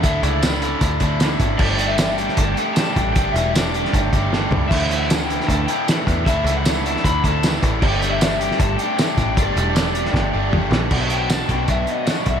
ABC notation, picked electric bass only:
X:1
M:4/4
L:1/8
Q:1/4=154
K:Glyd
V:1 name="Picked electric bass" clef=bass
D,, C,,3 D,, D,,2 ^G,,, | G,,,4 G,,, z2 A,,, | G,,, E,,,3 G,,, G,,,2 C,, | D,,4 D,, z2 E,, |
D,, C,,3 D,, D,,2 A,,, | G,,,4 G,,, z2 A,,, | G,,, E,,,3 G,,, G,,,2 _B,,, | B,,,3 B,,, B,,, z2 B,,, |]